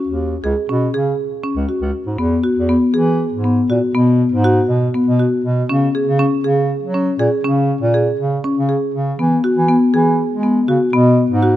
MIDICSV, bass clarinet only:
0, 0, Header, 1, 2, 480
1, 0, Start_track
1, 0, Tempo, 499168
1, 431, Time_signature, 7, 3, 24, 8
1, 11120, End_track
2, 0, Start_track
2, 0, Title_t, "Bass clarinet"
2, 0, Program_c, 0, 71
2, 72, Note_on_c, 0, 39, 65
2, 348, Note_off_c, 0, 39, 0
2, 428, Note_on_c, 0, 37, 75
2, 521, Note_off_c, 0, 37, 0
2, 665, Note_on_c, 0, 47, 74
2, 852, Note_off_c, 0, 47, 0
2, 901, Note_on_c, 0, 49, 69
2, 1090, Note_off_c, 0, 49, 0
2, 1501, Note_on_c, 0, 37, 58
2, 1598, Note_off_c, 0, 37, 0
2, 1746, Note_on_c, 0, 37, 65
2, 1842, Note_off_c, 0, 37, 0
2, 1986, Note_on_c, 0, 44, 62
2, 2081, Note_off_c, 0, 44, 0
2, 2103, Note_on_c, 0, 40, 77
2, 2292, Note_off_c, 0, 40, 0
2, 2466, Note_on_c, 0, 40, 77
2, 2654, Note_off_c, 0, 40, 0
2, 2828, Note_on_c, 0, 52, 79
2, 3108, Note_off_c, 0, 52, 0
2, 3195, Note_on_c, 0, 44, 61
2, 3473, Note_off_c, 0, 44, 0
2, 3558, Note_on_c, 0, 46, 75
2, 3650, Note_off_c, 0, 46, 0
2, 3794, Note_on_c, 0, 47, 77
2, 4072, Note_off_c, 0, 47, 0
2, 4151, Note_on_c, 0, 44, 90
2, 4430, Note_off_c, 0, 44, 0
2, 4511, Note_on_c, 0, 47, 74
2, 4698, Note_off_c, 0, 47, 0
2, 4873, Note_on_c, 0, 47, 76
2, 5059, Note_off_c, 0, 47, 0
2, 5235, Note_on_c, 0, 47, 77
2, 5421, Note_off_c, 0, 47, 0
2, 5477, Note_on_c, 0, 49, 77
2, 5662, Note_off_c, 0, 49, 0
2, 5833, Note_on_c, 0, 49, 87
2, 6020, Note_off_c, 0, 49, 0
2, 6193, Note_on_c, 0, 49, 81
2, 6472, Note_off_c, 0, 49, 0
2, 6558, Note_on_c, 0, 54, 75
2, 6835, Note_off_c, 0, 54, 0
2, 6914, Note_on_c, 0, 46, 82
2, 7008, Note_off_c, 0, 46, 0
2, 7151, Note_on_c, 0, 49, 81
2, 7430, Note_off_c, 0, 49, 0
2, 7510, Note_on_c, 0, 46, 87
2, 7790, Note_off_c, 0, 46, 0
2, 7879, Note_on_c, 0, 49, 70
2, 8063, Note_off_c, 0, 49, 0
2, 8241, Note_on_c, 0, 49, 72
2, 8424, Note_off_c, 0, 49, 0
2, 8597, Note_on_c, 0, 49, 71
2, 8782, Note_off_c, 0, 49, 0
2, 8837, Note_on_c, 0, 52, 81
2, 9021, Note_off_c, 0, 52, 0
2, 9200, Note_on_c, 0, 52, 87
2, 9383, Note_off_c, 0, 52, 0
2, 9554, Note_on_c, 0, 52, 75
2, 9831, Note_off_c, 0, 52, 0
2, 9915, Note_on_c, 0, 56, 67
2, 10191, Note_off_c, 0, 56, 0
2, 10277, Note_on_c, 0, 49, 74
2, 10368, Note_off_c, 0, 49, 0
2, 10512, Note_on_c, 0, 47, 88
2, 10788, Note_off_c, 0, 47, 0
2, 10869, Note_on_c, 0, 44, 90
2, 11120, Note_off_c, 0, 44, 0
2, 11120, End_track
0, 0, End_of_file